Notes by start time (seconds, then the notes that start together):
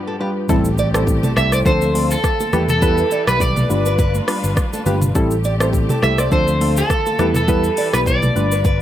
Already playing: G2 F3 G3 B3 D4 F4 G4 B4
0.07 A4
0.20 G3 D4 F4 G4 B4
0.49 A1 G3 A3 C4 E4 G4 A4, kick, impact, shaker
0.65 shaker
0.78 D5, shaker
0.94 G3 C4 E4 A4 C5, cross-stick, shaker
1.07 kick, low conga, shaker
1.23 A4, mid tom, high conga, shaker
1.36 C2 G3 C4 E4 A4 E5, cross-stick, high conga, shaker
1.52 C5 D5, cross-stick, shaker
1.65 D2 D3 F3 C4 D4 F4 A4 C5, kick, shaker
1.81 high conga, shaker
1.94 F3 C4 D4 A4, open hi-hat, high conga, shaker
2.11 A4, shaker
2.24 kick, cross-stick, low conga, shaker
2.40 A4, high conga, shaker
2.53 E2 E3 G3 B3 E4 G4 B4, cross-stick, high conga, low conga, shaker
2.69 A4, mid tom, shaker
2.82 G3 B3 E4 B4, kick, shaker
2.98 shaker
3.11 D5, shaker
3.27 B1 G3 B3 E4 B4, cross-stick, shaker
3.40 D5, kick, low conga, shaker
3.56 A4, mid tom, high conga, shaker
3.69 G1 G3 D4 F4 B4, high conga, shaker
3.86 B4, shaker
3.99 B4, kick, shaker
4.15 high conga, shaker
4.28 G3 D4 F4 B4, cross-stick, open hi-hat, high conga, shaker
4.44 G1, shaker
4.57 kick, cross-stick, low conga, shaker
4.73 A4, high conga, shaker
4.86 G1 G3 D4 F4 G4 B4, high conga, low conga, shaker
5.02 mid tom, shaker
5.15 A1 G3 A3 C4 E4 G4 A4, kick, shaker
5.31 shaker
5.44 D5, shaker
5.60 G3 C4 E4 A4 C5, cross-stick, shaker
5.73 kick, low conga, shaker
5.89 A4, mid tom, high conga, shaker
6.02 C2 G3 C4 E4 A4 E5, cross-stick, high conga, shaker
6.18 C5 D5, cross-stick, shaker
6.31 D2 D3 F3 C4 D4 F4 A4 C5, kick, shaker
6.48 high conga, shaker
6.61 F3 C4 D4 A4, open hi-hat, high conga, shaker
6.77 A4, shaker
6.90 kick, cross-stick, low conga, shaker
7.06 A4, high conga, shaker
7.19 E2 E3 G3 B3 E4 G4 B4, cross-stick, high conga, low conga, shaker
7.35 A4, mid tom, shaker
7.48 G3 B3 E4 B4, kick, shaker
7.64 shaker
7.77 D5, open hi-hat, shaker
7.93 B1 G3 B3 E4 B4, cross-stick, shaker
8.06 D5, kick, low conga, shaker
8.22 A4, mid tom, high conga, shaker
8.35 G1 G3 D4 F4 B4, high conga, shaker
8.52 B4, shaker
8.65 B4, kick, shaker